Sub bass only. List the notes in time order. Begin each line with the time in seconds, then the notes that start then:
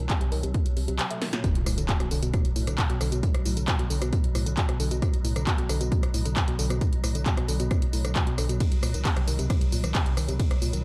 0.21 C2
0.32 C2
0.43 C2
0.66 C2
0.77 C2
0.88 C2
1.55 B1
1.66 B1
1.78 B1
2.00 B1
2.11 B1
2.23 B1
2.45 B1
2.56 B1
2.67 B1
2.90 B1
3.01 B1
3.12 B1
3.35 B1
3.46 B1
3.57 B1
3.79 B1
3.90 B1
4.02 B1
4.24 B1
4.35 B1
4.46 B1
4.69 B1
4.80 B1
4.91 B1
5.14 B1
5.25 B1
5.36 B1
5.58 B1
5.69 B1
5.81 B1
6.03 B1
6.14 B1
6.26 B1
6.48 B1
6.59 B1
6.70 B1
6.93 B1
7.04 B1
7.15 B1
7.37 B1
7.49 B1
7.60 B1
7.82 B1
7.93 B1
8.05 B1
8.27 B1
8.38 B1
8.49 B1
8.72 C2
8.83 C2
8.94 C2
9.16 C2
9.28 C2
9.39 C2
9.61 C2
9.72 C2
9.84 C2
10.06 C2
10.17 C2
10.29 C2
10.51 C2
10.62 C2
10.73 C2